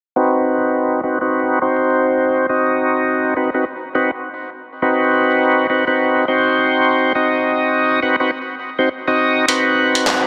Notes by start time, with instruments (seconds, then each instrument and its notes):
0.16 tonewheel organ C4 D#4 F#4 B4
1.03 tonewheel organ C4 D#4 F#4 B4
1.21 tonewheel organ C4 D#4 F#4 B4
1.62 tonewheel organ C4 D#4 F#4 C5
2.49 tonewheel organ C4 D#4 F#4 D#5
3.37 tonewheel organ C4 D#4 F#4 B4
3.54 tonewheel organ C4 D#4 F#4 B4
3.95 tonewheel organ C4 D#4 F#4 B4
4.82 tonewheel organ C4 D#4 F#4 B4
5.70 tonewheel organ C4 D#4 F#4 B4
5.87 tonewheel organ C4 D#4 F#4 B4
6.28 tonewheel organ C4 D#4 F#4 C5
7.15 tonewheel organ C4 D#4 F#4 D#5
8.02 tonewheel organ C4 D#4 F#4 B4
8.20 tonewheel organ C4 D#4 F#4 B4
8.79 tonewheel organ C4 D#4 F#4 C5
9.07 tonewheel organ C4 D#4 F#4 D#5
9.48 tonewheel organ C4 D#4 F#4 B4, closed hi-hat
9.95 closed hi-hat
10.07 clap, closed hi-hat